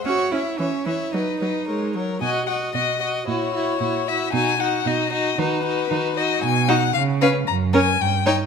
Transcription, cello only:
X:1
M:2/4
L:1/8
Q:1/4=114
K:B
V:1 name="Cello" clef=bass
F E C E | D3 z | B,,2 B,,2 | A,,2 A,,2 |
B,,2 B,,2 | D,2 D,2 | [K:F#] B,,2 C,2 | F,,2 =G,,2 |]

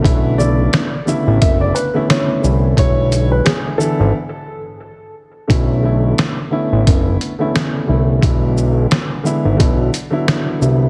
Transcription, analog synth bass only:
X:1
M:4/4
L:1/16
Q:"Swing 16ths" 1/4=88
K:Bdor
V:1 name="Analog synth bass" clef=bass
B,,,4 z3 A,,, F,,,2 z4 =C,,2 | B,,,4 z3 G,,, z8 | B,,,4 z3 A,,, F,,,2 z4 =C,,2 | B,,,4 z3 G,,, B,,,2 z4 =C,,2 |]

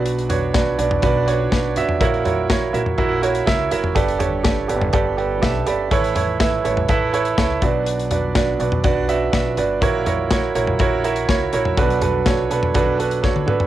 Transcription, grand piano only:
X:1
M:4/4
L:1/8
Q:1/4=123
K:Bm
V:1 name="Grand piano"
[DFBd] [DFBc] [DFBd] [DFBd] [DFBd] [DFBc] [DFBd] [DFBe] | [EF^Ac] [EFAc] [EFAc] [EFAe] [EFAe] [EFAc] [EFAe] [EFAe] | [GABd] [GABc] [GABd] [GABd] [GABd] [GABdg] [GABea] [GABdb] | [EABc] [EABc] [EABe] [EABc] [EABe] [EABc] [EABc] [DFBd]- |
[DFBd] [DFBd] [DFBd] [DFBd] [DFBd] [DFBe] [DFBe] [DFBd] | [EF^Ac] [EFAc] [EFAc] [EFAc] [EFAc] [EFAe] [EFAc] [EFAc] | [DFAB] [DFAB] [DFAc] [DFAB] [DFAB] [DFAB] [DFAc] [DFAB] |]
V:2 name="Grand piano" clef=bass
[B,,F,]2 z6 | [^A,,^A,]3 z4 z | [G,,D,]3 z4 z | [A,,E,]3 z4 [B,,F,]- |
[B,,F,]2 z6 | [^A,,^A,]3 z4 z | [B,,F,]3 z4 z |]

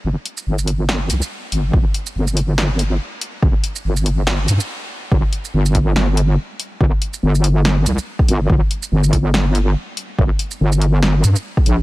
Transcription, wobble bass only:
X:1
M:4/4
L:1/16
Q:"Swing 16ths" 1/4=142
K:Gm
V:1 name="Wobble bass" clef=bass
G,,, z3 G,,,6 C,, z3 G,,,2 | G,,, z3 G,,,8 z4 | G,,, z3 G,,,6 G,, z4 z | G,,,2 z2 G,,,8 z4 |
G,,,2 z2 G,,,6 C,,2 z2 G,,,2 | G,,,2 z2 G,,,8 z4 | G,,,2 z2 G,,,6 G,,2 z2 B,,,2 |]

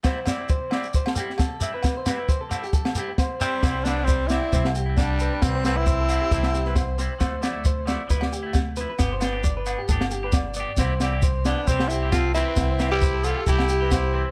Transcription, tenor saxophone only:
X:1
M:4/4
L:1/16
Q:"Swing 16ths" 1/4=134
K:C
V:1 name="Tenor saxophone"
z16 | z12 z2 C2- | C2 D2 C2 E4 z2 D4 | C2 C E8- E3 z2 |
z16 | z16 | z6 D2 C2 E2 F2 E2- | E3 G3 A2 G4 G3 z |]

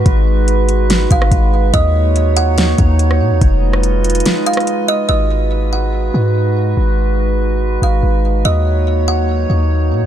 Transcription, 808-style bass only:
X:1
M:4/4
L:1/16
Q:1/4=143
K:Abdor
V:1 name="808-style bass" clef=bass
A,,,8- A,,,2 A,,,2 A,,,4 | E,,8- E,,2 E,,4 B,, E,, | F,,,8 z8 | A,,,8- A,,,2 A,,6 |
A,,,8- A,,,2 A,,,2 A,,,4 | E,,8- E,,2 E,,4 B,, E,, |]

